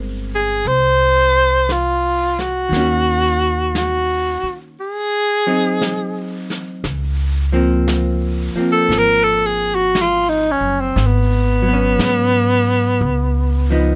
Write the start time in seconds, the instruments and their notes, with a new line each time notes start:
Already playing: upright bass G1, hollow-body jazz guitar G#3 C4 A#4
0.35 alto saxophone G#4
0.65 upright bass C2, alto saxophone C5, brush sweep
1.69 alto saxophone F4, brush sweep, snare, hi-hat pedal
2.39 alto saxophone F#4, snare
2.69 upright bass D#2, hollow-body jazz guitar D#3, brush sweep, snare
2.73 hollow-body jazz guitar A#3 C#4
2.80 hollow-body jazz guitar F#4
3.75 alto saxophone F#4, brush sweep, snare, hi-hat pedal
4.43 muted upright bass stroke
4.78 alto saxophone G#4, brush sweep
5.47 hollow-body jazz guitar F#3 C4 D#4
5.81 brush sweep, snare, hi-hat pedal
6.50 snare
6.84 upright bass C#2, brush sweep, snare
7.52 hollow-body jazz guitar F3 A#3 C4
7.88 brush sweep, snare, hi-hat pedal
8.55 hollow-body jazz guitar F3 A#3, muted upright bass stroke
8.59 hollow-body jazz guitar C4
8.72 alto saxophone A4
8.89 upright bass G#1, brush sweep, snare
8.98 alto saxophone A#4
9.24 alto saxophone A4
9.46 alto saxophone G#4
9.75 alto saxophone F#4
9.95 brush sweep, snare, hi-hat pedal
10.01 alto saxophone F4
10.29 alto saxophone D#4
10.51 alto saxophone C#4
10.61 upright bass F#1
10.80 alto saxophone C4
10.96 upright bass G#1, brush sweep, snare
11.06 alto saxophone B3
11.62 hollow-body jazz guitar F#3
11.69 hollow-body jazz guitar B3
11.73 hollow-body jazz guitar C#4
11.98 upright bass G#2, brush sweep, snare, hi-hat pedal
13.01 upright bass C#2, brush sweep
13.70 hollow-body jazz guitar F3 B3 D#4